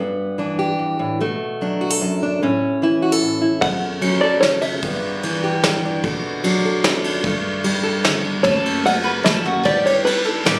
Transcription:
Already playing: G2 B4
0.00 B3
0.38 E3 D4
0.59 G4
0.79 G2
0.99 A2
1.20 B2 A3
1.61 F#3 D4
1.81 F#4
1.90 A4
2.01 F#2
2.23 D4
2.43 A2 C#4
2.82 E3 E4
3.02 F#4
3.12 A4
3.21 A2
3.42 E4
3.61 F#2 A3 F#5, kick, ride
4.01 F#3 C#4, ride
4.21 A4 D5
4.41 C#3 C#5, snare, ride
4.62 C#4 E5, ride
4.82 G2 B3, kick, ride
5.23 E3 D4, ride
5.44 G4
5.64 G2, snare, ride
5.85 D4
6.03 B2 A3, kick, ride
6.44 F#3 D4, ride
6.65 A4
6.84 F#2, snare, ride
7.04 D4, ride
7.24 G2 A3, kick, ride
7.64 G3 D4, ride
7.84 A4
8.04 D3, snare, ride
8.25 D4
8.43 F#1 F#2 C#3 F#3 A3 C#4 F#4 A4 C#5, kick, ride
8.66 ride
8.84 F#3 A3 C#4 F#4 F#5, ride
9.04 F#3 A3 C#4 F#4 B4
9.23 F#1 F#3 A3 C#4 F#4 A4 E5, snare, ride
9.43 F#3 A3 C#4 F#4
9.63 G1 G3 D4 E4 G4 B4 D5, kick, ride
9.86 C#5, ride
10.05 G3 D4 E4 B4, ride
10.24 D4 E4 A4 B4
10.43 A1 G3 D4 E4 G4 B4, snare, ride

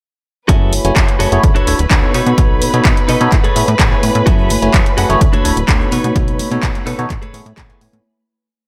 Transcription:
0.48 F#2 A3 E4 F#4 G#4 A4 B4 C#5 E5 G#5 B5, kick, closed hi-hat
0.73 F#1, open hi-hat
0.84 F#1 A3 E4 F#4 C#5 G#5, closed hi-hat
0.95 F#2 F#4 G#4 A4 E5, kick, clap, closed hi-hat
1.08 closed hi-hat
1.19 F#1 F#4 G#4 A4 C#5, open hi-hat
1.32 F#1 A3 E4 F#4 G#4 C#5, closed hi-hat
1.44 D2, kick, closed hi-hat
1.55 D1 D4 F#4 A4 C#5, closed hi-hat
1.67 D1 D4 E4 F#4 A4 C#5, open hi-hat
1.79 D1, closed hi-hat
1.90 D2 D4 F#4 A4 C#5, kick, clap, closed hi-hat
2.02 B3 D#4 F#4 A4 C#5
2.13 B2 D#4 A4 B4 C#5, open hi-hat
2.26 B2, closed hi-hat
2.37 B1 B3 D#4 F#4 A4 C#5, kick, closed hi-hat
2.62 B2, open hi-hat
2.73 B2 B3 D#4 F#4 A4 C#5, closed hi-hat
2.84 B1 D#4 A4 B4 D#5, kick, clap, closed hi-hat
2.97 closed hi-hat
3.08 B2 D#4 A4 B4 D#5, open hi-hat
3.20 B2 B3 D#4 F#4 A4 C#5, closed hi-hat
3.32 A1, kick, clap, closed hi-hat
3.44 A2 G#4 A4 B4 C#5, closed hi-hat
3.55 A2 B3 E4 G#4 A4 C#5, open hi-hat
3.68 A2, closed hi-hat
3.79 A1 G#4 A4 B4 C#5, kick, clap, closed hi-hat
3.91 A3 B3 E4 C#5 G#5
4.03 A2, open hi-hat
4.15 A2, closed hi-hat
4.26 F#2 A3 E4 F#4 G#4 A4 C#5 E5 G#5, kick, closed hi-hat, shaker
4.38 shaker
4.50 F#1, open hi-hat, high conga, shaker
4.62 F#1 A3 E4 F#4 C#5 G#5, closed hi-hat, shaker
4.73 F#2 F#4 G#4 A4 E5, kick, clap, closed hi-hat, shaker
4.86 closed hi-hat, high conga, shaker
4.97 F#1 F#4 G#4 A4 F#5, open hi-hat, shaker
5.09 F#1 A3 E4 F#4 G#4 C#5, closed hi-hat, low conga, shaker
5.21 D2, kick, closed hi-hat
5.33 D1 D4 F#4 A4 C#5, closed hi-hat, high conga
5.44 D1 D4 E4 F#4 A4 C#5, open hi-hat, shaker
5.56 D1, closed hi-hat, shaker
5.68 D2 D4 F#4 A4 C#5, kick, clap, closed hi-hat, high conga, shaker
5.80 B3 D#4 F#4 A4 C#5, shaker
5.91 B2 D#4 A4 B4 C#5, open hi-hat, low conga, shaker
6.04 B2, closed hi-hat, high conga, shaker
6.15 B1 B3 D#4 F#4 A4 C#5, kick, closed hi-hat, shaker
6.28 closed hi-hat, shaker
6.39 B2, open hi-hat, high conga, shaker
6.51 B2 B3 D#4 F#4 A4 C#5, closed hi-hat, shaker
6.62 B1 D#4 A4 B4 C#5, kick, clap, closed hi-hat, shaker
6.75 closed hi-hat, high conga, shaker
6.86 B2 D#4 A4 B4 C#5, open hi-hat, shaker
6.98 B2 B3 D#4 F#4 A4 C#5, closed hi-hat, low conga, shaker
7.10 A1, kick, clap, closed hi-hat, shaker
7.22 A2 G#4 A4 B4 C#5, closed hi-hat, high conga
7.33 A2 B3 E4 G#4 A4 C#5, open hi-hat, low conga, shaker
7.46 A2, closed hi-hat, shaker
7.57 A1 G#4 A4 B4 C#5, kick, clap, closed hi-hat, high conga, shaker
7.69 A3 B3 E4 C#5 G#5, closed hi-hat, low conga, shaker
7.81 A2, open hi-hat, shaker
7.93 A2, closed hi-hat, high conga, shaker

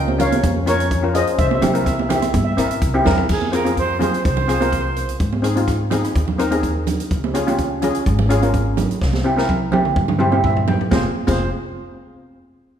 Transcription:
Already playing: C#2 D#5 G5
0.08 high conga
0.18 C#4 F4 A#4 C#5 F5, closed hi-hat, low conga
0.32 closed hi-hat, high conga
0.43 F2, kick, closed hi-hat, high conga
0.66 C#4 F4 A#4 C#5, cross-stick, closed hi-hat
0.80 closed hi-hat
0.91 kick, closed hi-hat
1.03 C#4 F4 A#4
1.14 C#4 F4 G#4 C5 D#5, closed hi-hat
1.27 closed hi-hat
1.38 C2 C5 E5, kick, closed hi-hat
1.47 E5
1.51 E5, high conga
1.62 C2 C4 E4 G4 E5, cross-stick, closed hi-hat, high conga, low conga
1.69 E5
1.73 C4 E4 A#4, closed hi-hat
1.78 E5
1.84 E5, kick, cross-stick, closed hi-hat
1.93 E5
1.99 E5, high conga
2.09 C4 E4 G4 E5, cross-stick, closed hi-hat, low conga
2.16 E5
2.22 E5, cross-stick, closed hi-hat, high conga
2.29 E5
2.34 G2 E5, kick, closed hi-hat, high conga
2.44 E5
2.52 E5
2.57 A#1 C4 E4 A#4 E5, cross-stick, closed hi-hat
2.68 E5, closed hi-hat
2.82 C2, kick, closed hi-hat
2.94 C4 E4 G4
3.04 E2 C4 E4 A#4, snare, low conga
3.17 floor tom
3.29 F2 G#4, kick, crash
3.42 high conga
3.52 C4 F4 G#4 A#4, cross-stick, closed hi-hat
3.65 C4 F4 G#4, closed hi-hat, high conga
3.77 C5, kick, closed hi-hat
3.99 C4 F4 G#4 C5, closed hi-hat, high conga, low conga
4.14 closed hi-hat
4.25 C2 C5, kick, closed hi-hat
4.37 low conga
4.48 C4 F4 G#4, cross-stick, closed hi-hat
4.60 C4 F4 A#4, closed hi-hat, high conga
4.72 kick, closed hi-hat
4.96 closed hi-hat
5.09 closed hi-hat
5.20 G#2, kick, closed hi-hat
5.33 high conga
5.42 C4 D#4 G#4, cross-stick, closed hi-hat
5.55 C4 D#4 F4, closed hi-hat, high conga
5.68 kick, cross-stick, closed hi-hat
5.91 C4 D#4 G#4, cross-stick, closed hi-hat, high conga, low conga
6.04 cross-stick, closed hi-hat
6.15 D#2, kick, closed hi-hat
6.28 low conga
6.38 C4 D#4 A#4, cross-stick, closed hi-hat
6.51 C4 D#4 G#4, closed hi-hat, high conga
6.63 kick, closed hi-hat
6.87 closed hi-hat, low conga
7.00 closed hi-hat
7.11 C#2, kick, closed hi-hat
7.24 high conga
7.34 C#4 F4 G#4, cross-stick, closed hi-hat
7.46 C#4 F4 G4, closed hi-hat, high conga
7.58 kick, closed hi-hat
7.82 C#4 F4 G#4, closed hi-hat, low conga
7.95 closed hi-hat
8.06 G#1, kick, closed hi-hat
8.19 low conga
8.29 C#4 F4 G#4, cross-stick, closed hi-hat
8.42 C#4 F4 A#4, closed hi-hat, high conga
8.54 kick, closed hi-hat
8.77 closed hi-hat, high conga, low conga
8.91 closed hi-hat
9.02 C2, kick, snare
9.13 snare, high conga
9.24 C4 E4 G4
9.36 C4 E4 A#4, snare
9.49 kick, high tom
9.72 C4 E4 G4, high tom, high conga, low conga
9.85 mid tom
9.96 G2, kick
10.08 mid tom, low conga
10.19 C4 E4 G4 C5, mid tom
10.32 C4 E4 G4, high conga
10.44 E5, kick, mid tom
10.56 floor tom
10.68 G5, floor tom, high conga, low conga
10.81 floor tom
10.91 F1 C4 F4 G#4 C5, kick, snare, high conga
11.27 F1 C4 F4 G#4 C5, kick, crash, high conga

